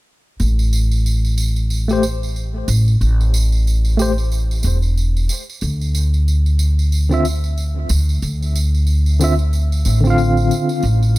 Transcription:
0.40 2.66 A1 medium
0.40 tambourine soft
0.59 tambourine soft
0.73 tambourine medium
0.91 tambourine soft
1.06 tambourine soft
1.25 tambourine soft
1.38 tambourine medium
1.56 tambourine soft
1.70 tambourine soft
1.88 2.02 A3 medium
1.88 2.03 G4 medium
1.88 tambourine soft
1.93 2.04 C5 medium
2.03 tambourine medium
2.23 tambourine soft
2.36 tambourine soft
2.68 2.97 A1 medium
2.68 tambourine medium
2.88 tambourine soft
3.01 4.61 A1 medium
3.01 tambourine soft
3.21 tambourine soft
3.34 tambourine medium
3.52 tambourine soft
3.67 tambourine soft
3.85 tambourine soft
3.98 4.09 A3 medium
3.98 4.10 G4 medium
3.98 tambourine medium
4.02 4.11 C5 medium
4.18 tambourine soft
4.32 tambourine medium
4.51 tambourine soft
4.63 5.27 E1 medium
4.63 tambourine loud
4.82 tambourine soft
4.97 tambourine soft
5.17 tambourine soft
5.29 tambourine medium
5.49 tambourine soft
5.61 7.88 D2 medium
5.61 tambourine soft
5.81 tambourine soft
5.95 tambourine medium
6.14 tambourine soft
6.28 tambourine soft
6.46 tambourine soft
6.59 tambourine medium
6.79 tambourine soft
6.92 tambourine medium
7.09 7.23 D3 medium
7.09 7.24 C4 medium
7.09 7.25 F4 medium
7.09 tambourine soft
7.14 7.25 E5 medium
7.25 tambourine medium
7.44 tambourine soft
7.58 tambourine soft
7.89 8.19 D2 medium
7.89 tambourine medium
8.09 tambourine soft
8.22 9.83 D2 medium
8.22 tambourine medium
8.42 tambourine soft
8.55 tambourine medium
8.74 tambourine soft
8.87 tambourine soft
9.06 tambourine soft
9.19 9.31 D3 medium
9.19 9.32 C4 medium
9.19 9.33 F4 medium
9.19 tambourine medium
9.24 9.33 E5 medium
9.39 tambourine soft
9.53 tambourine soft
9.72 tambourine soft
9.85 10.48 A1 medium
9.85 tambourine medium
10.01 10.80 D3 medium
10.01 10.81 C4 medium
10.01 tambourine soft
10.07 10.83 F4 medium
10.07 10.85 F5 medium
10.18 tambourine soft
10.37 tambourine soft
10.51 tambourine medium
10.69 tambourine soft
10.82 11.19 A1 medium
10.82 tambourine soft
11.03 tambourine soft

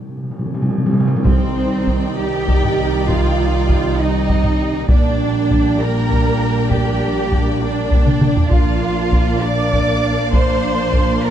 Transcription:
0.00 0.07 C3 soft
0.09 0.15 C3 medium
0.17 0.22 C3 medium
0.23 0.30 C3 medium
0.31 0.38 C3 medium
0.39 0.45 C3 medium
0.46 0.53 C3 medium
0.54 0.61 C3 medium
0.62 0.69 C3 medium
0.70 0.77 C3 medium
0.78 0.84 C3 medium
0.86 0.92 C3 medium
0.93 0.98 C3 medium
1.00 1.06 C3 medium
1.07 1.14 C3 loud
1.16 1.23 C3 loud
1.24 4.86 C2 medium
1.24 2.14 C3 medium
1.24 4.86 D#3 medium
1.24 4.86 G3 medium
1.24 2.14 C4 medium
1.24 4.86 C4 medium
1.24 4.86 D#4 medium
1.24 2.14 C5 medium
1.24 4.86 D5 medium
1.24 4.85 G5 medium
1.24 taiko medium
1.87 taiko medium
2.18 3.07 G4 medium
2.18 3.09 G5 medium
2.48 taiko medium
2.64 taiko low-mid soft
3.07 3.99 F4 medium
3.07 3.96 F5 medium
3.07 taiko medium
3.69 taiko medium
3.98 4.89 D#4 medium
3.98 4.89 D#5 medium
4.29 taiko medium
4.44 taiko low-mid soft
4.89 8.50 A#1 medium
4.89 8.33 A#2 medium
4.89 8.33 G3 medium
4.89 8.35 A#3 medium
4.89 8.51 A#3 medium
4.89 8.35 D4 medium
4.89 5.79 D4 medium
4.89 8.48 D4 medium
4.89 8.47 D5 medium
4.89 5.79 D5 medium
4.89 8.47 G5 medium
4.89 taiko medium
5.50 taiko medium
5.81 6.71 A#4 medium
5.81 6.71 A#5 medium
6.11 taiko medium
6.71 7.61 G4 medium
6.71 7.59 G5 medium
6.71 taiko medium
7.31 taiko medium
7.61 8.51 D4 medium
7.61 8.50 D5 medium
7.91 taiko medium
8.06 taiko mid medium
8.21 taiko mid medium
8.36 taiko low medium
8.50 11.30 A#1 medium
8.50 11.30 A#2 medium
8.50 11.30 F3 medium
8.50 11.30 A#3 medium
8.50 11.30 D4 medium
8.50 9.43 F4 medium
8.50 11.30 D5 medium
8.50 9.43 F5 medium
8.50 11.30 F5 medium
8.50 taiko medium
9.13 taiko medium
9.42 10.33 D5 loud
9.42 10.33 D6 medium
9.73 taiko medium
10.33 11.22 C5 medium
10.33 11.23 C6 medium
10.33 taiko medium
10.93 taiko medium
11.24 11.30 A#4 medium
11.24 11.30 A#5 medium

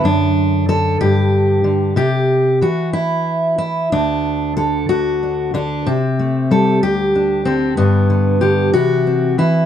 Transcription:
0.00 0.96 F#2 medium
0.00 0.67 D3 medium
0.05 0.68 D4 loud
0.69 1.63 D3 medium
0.69 1.00 A4 loud
1.01 1.93 G2 medium
1.01 1.96 G4 loud
1.64 1.96 D3 medium
1.96 2.61 C3 medium
1.96 2.61 G4 loud
2.61 3.88 E3 medium
2.61 2.93 F#4 medium
2.93 3.57 E4 medium
3.58 3.92 E4 medium
3.92 4.88 D2 medium
3.92 4.56 D4 medium
4.57 5.53 D3 medium
4.57 4.89 A4 medium
4.89 5.86 D2 medium
4.89 5.54 F#4 loud
5.23 5.53 D4 soft
5.54 5.87 D3 medium
5.54 5.87 D4 medium
5.86 6.79 C3 medium
5.86 6.83 C4 medium
6.19 6.79 A3 soft
6.51 7.46 G3 medium
6.51 6.82 A4 medium
6.83 7.78 D2 medium
6.83 7.78 G4 loud
7.15 7.45 D4 soft
7.45 7.77 D3 medium
7.45 7.77 C4 medium
7.77 8.70 G2 medium
7.77 8.09 D3 soft
7.77 8.73 B3 medium
8.10 8.41 D3 soft
8.41 8.74 D3 medium
8.41 8.73 G4 medium
8.73 9.39 C3 medium
8.73 9.37 E3 soft
8.73 9.06 C4 soft
8.73 9.38 F#4 loud
9.07 9.66 C4 soft
9.38 9.66 E3 medium
9.38 9.66 E4 medium

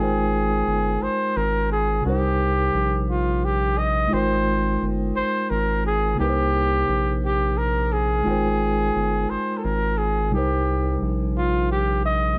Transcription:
0.00 0.63 G#1 medium
0.00 1.99 G#3 medium
0.00 2.00 D#4 soft
0.00 2.01 F4 soft
0.00 1.04 G#4 medium
0.00 2.02 A#4 soft
0.00 2.03 C5 medium
0.00 2.02 G5 soft
0.67 0.98 G1 medium
1.01 1.08 G#1 soft
1.01 1.38 C5 medium
1.36 2.01 G#1 medium
1.36 1.71 A#4 medium
1.72 2.03 G#4 medium
2.01 2.70 C2 medium
2.01 4.06 C3 medium
2.01 4.07 G3 soft
2.05 2.11 C#4 soft
2.05 3.05 G4 medium
2.05 4.09 A#4 soft
2.05 4.10 C5 medium
2.12 4.08 D#4 soft
2.74 4.08 A#1 medium
3.10 3.46 F4 medium
3.45 3.80 G4 medium
3.78 4.15 D#5 medium
4.08 6.12 G#3 medium
4.08 6.13 D#4 soft
4.08 6.14 F4 soft
4.13 4.77 G#1 loud
4.13 6.16 A#4 soft
4.13 4.89 C5 medium
4.13 6.16 C5 medium
4.13 6.15 G5 soft
4.82 5.12 G1 medium
5.16 5.23 G#1 soft
5.16 5.52 C5 medium
5.50 6.15 G#1 medium
5.50 5.84 A#4 medium
5.86 6.17 G#4 medium
6.15 8.19 C3 soft
6.15 8.20 A#3 soft
6.19 6.84 C2 loud
6.19 8.22 D#4 soft
6.19 7.18 G4 loud
6.19 8.23 A#4 soft
6.24 6.27 B4 soft
6.30 8.27 C5 medium
6.89 8.22 A#1 medium
7.24 7.59 G4 medium
7.58 7.94 A#4 medium
7.92 9.31 G#4 medium
8.23 8.90 G#1 loud
8.23 10.27 G#3 soft
8.23 10.28 D#4 soft
8.23 10.28 F4 medium
8.27 10.30 A#4 soft
8.27 10.31 C5 medium
8.27 10.29 G5 soft
8.95 9.26 G1 medium
9.30 9.37 G#1 soft
9.30 9.59 C5 medium
9.57 9.66 A4 medium
9.64 10.34 G#1 medium
9.64 9.99 A#4 medium
9.98 10.32 G#4 medium
10.30 10.97 C2 medium
10.30 12.34 C3 medium
10.30 12.35 G3 soft
10.30 12.36 D#4 medium
10.30 11.05 G4 medium
10.36 12.37 A#4 soft
10.36 12.38 C5 medium
11.02 12.35 A#1 medium
11.38 11.69 F4 medium
11.71 12.03 G4 medium
12.06 12.37 D#5 medium

